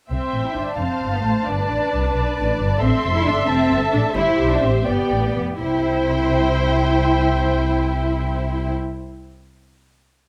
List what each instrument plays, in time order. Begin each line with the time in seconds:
0.10 double bass section C2, cello section C4, viola section C5, violin section E5 G5
0.33 double bass section A1
0.45 cello section E4
0.55 double bass section G1, cello section D4
0.78 double bass section F1, cello section C4, viola section C5, violin section F5 A5
1.01 double bass section G1
1.13 cello section B3
1.23 double bass section A1, cello section A3
1.46 double bass section G1, cello section D4, viola section B4, violin section D5
1.70 double bass section A1
1.92 double bass section C2
2.14 double bass section B1, violin section D5
2.37 double bass section A1
2.59 double bass section G1
2.80 double bass section A1, cello section C4, viola section A4, violin section E5 C6
3.03 double bass section F1
3.15 cello section E4
3.25 double bass section G1, cello section D4
3.47 double bass section F1, cello section C4, viola section A4, violin section A5
3.71 double bass section G1
3.93 double bass section A1, cello section D4
4.16 double bass section G1, cello section E4, viola section G4, violin section C5 E5
4.40 double bass section B1
4.53 cello section D4
4.63 double bass section A1, cello section C4
4.86 double bass section G1, cello section B3, viola section G4, violin section D5 G5
5.10 double bass section A1
5.35 double bass section F1
5.59 double bass section C2, viola section E4, cello section E4, violin section C5 G5